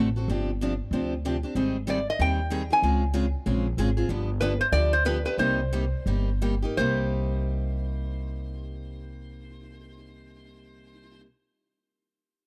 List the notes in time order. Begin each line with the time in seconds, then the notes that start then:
Already playing: A1
0.16 C4 F#4 A4
0.28 G1 C3 F3 C4 D4 G4
0.61 C3 F3 C4 D4 G4
0.91 D2 C3 F3 C4 D4 G4
1.25 C3 F3 C4 D4 G4
1.43 C4 D4 G4
1.55 G#1 D#3 G3 C4 D#4 G#4
1.87 D#3 G3 C4 D#4 G#4 D5
2.10 D#5
2.19 D#2 D#3 G3 C4 D#4 G#4 G5
2.50 D#3 G3 C4 D#4 G#4
2.70 C4 D#4 G#4 G#5
2.82 C#2 C#3 G#3 C4 F4 G#4
3.14 C#3 G#3 C4 F4 G#4
3.46 A#1 C#3 G#3 C4 F4 G#4
3.77 G#1 C#3 G#3 C4 F4 G#4
3.97 C4 F4 G#4
4.09 G1 D3 F3 B3 D4 G4
4.41 D3 F3 B3 D4 G4 B4
4.61 C5
4.72 D2 D3 F3 B3 D4 G4 D5
4.93 C5
5.05 D3 F3 B3 D4 G4 B4
5.25 B3 D4 G4 B4
5.38 C2 C3 G3 A#3 D#4 G4 C5
5.73 C3 G3 A#3 D#4 G4
6.06 G1 C3 G3 A#3 D#4 G4
6.42 C3 G3 A#3 D#4 G4
6.62 A#3 D#4 G4
6.77 C2 C3 G3 A#3 D#4 G4 C5